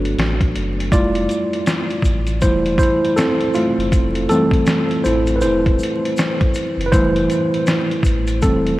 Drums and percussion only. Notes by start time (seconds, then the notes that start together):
0.05 closed hi-hat
0.18 snare, closed hi-hat
0.41 kick, closed hi-hat
0.55 closed hi-hat
0.80 closed hi-hat
0.92 kick, closed hi-hat, shaker
1.15 closed hi-hat
1.29 closed hi-hat, shaker
1.53 closed hi-hat
1.66 snare, closed hi-hat, shaker
1.90 closed hi-hat
2.02 kick, closed hi-hat, shaker
2.27 closed hi-hat, shaker
2.41 kick, closed hi-hat, shaker
2.66 closed hi-hat
2.78 kick, shaker
2.83 closed hi-hat
3.05 closed hi-hat
3.17 snare, closed hi-hat, shaker
3.41 closed hi-hat
3.54 closed hi-hat, shaker
3.80 closed hi-hat
3.92 kick, closed hi-hat, shaker
4.15 closed hi-hat
4.29 closed hi-hat, shaker
4.51 kick, closed hi-hat
4.66 snare, closed hi-hat, shaker
4.91 closed hi-hat
5.05 closed hi-hat, shaker
5.27 closed hi-hat, shaker
5.41 closed hi-hat, shaker
5.66 kick, closed hi-hat
5.79 shaker
5.83 closed hi-hat
6.05 closed hi-hat
6.17 snare, closed hi-hat, shaker
6.41 kick, closed hi-hat
6.54 closed hi-hat, shaker
6.81 closed hi-hat
6.92 kick, closed hi-hat, shaker
7.16 closed hi-hat
7.30 closed hi-hat, shaker
7.54 closed hi-hat
7.67 snare, closed hi-hat, shaker
7.91 closed hi-hat
8.03 kick, closed hi-hat, shaker
8.27 closed hi-hat, shaker
8.42 kick, closed hi-hat, shaker
8.67 closed hi-hat